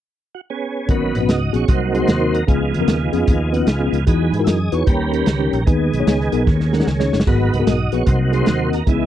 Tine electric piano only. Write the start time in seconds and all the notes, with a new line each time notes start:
0.88 G#2 B3 C#4 F#4 A#4
1.20 B3 C#4 F#4 B4
1.53 B3 C#4 F#4 G#4
1.68 C3
1.93 C4 D#4 F#4 G#4
2.20 C4 D#4 F#4 A#4
2.47 C#3 B3 C#4 F4 G#4
2.80 B3 C#4 F4 A#4
3.13 B3 C#4 F4 G#4
3.52 B3 C#4 F4 B4
3.79 B3 C#4 F4 G#4
4.07 E3 D#4 E4 F#4 G#4
4.39 D#4 E4 F#4 A#4
4.72 D#4 E4 F#4 B4
4.87 D#3
5.12 C#4 D#4 G4 A#4
5.39 C#4 D#4 G4 A#4
5.67 D#3 B3 D#4 G#4 B4
6.00 B3 D#4 G#4 C#5
6.32 B3 D#4 G#4 A#4
6.46 D#3
6.73 C#4 D#4 G#4 A#4
7.00 C#4 D#4 G#4 C#5
7.27 G#2 B3 F#4 G#4 A#4
7.59 B3 F#4 G#4 A#4
7.93 B3 F#4 G#4 B4
8.08 C3
8.32 C4 D#4 F#4 G#4
8.59 C4 D#4 F#4 A#4
8.87 C#3 B3 C#4 E4 G#4